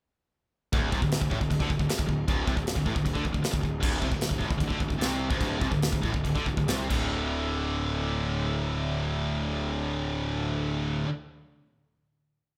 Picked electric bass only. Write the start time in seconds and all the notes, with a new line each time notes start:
0.73 D1
0.93 C2
1.02 D1
1.22 D1
1.32 A1
1.41 D1
1.51 D1
1.61 D2
1.70 D1
1.80 D1
1.89 muted picked electric bass stroke
1.99 D1
2.09 D1
2.28 D1
2.47 C2
2.57 D1
2.76 D1
2.86 A1
2.96 D1
3.06 D1
3.16 D2
3.25 D1
3.35 D1
3.45 muted picked electric bass stroke
3.54 D1
3.64 D1
3.83 D1
4.02 C2
4.12 D1
4.31 D1
4.41 A1
4.51 D1
4.60 D1
4.70 D2
4.81 D1
4.90 D1
5.02 C2
5.30 D1
5.41 D1
5.62 C2
5.72 D1
5.93 D1
6.04 A1
6.14 D1
6.25 D1
6.36 D2
6.47 D1
6.57 D1
6.68 C2
6.91 D1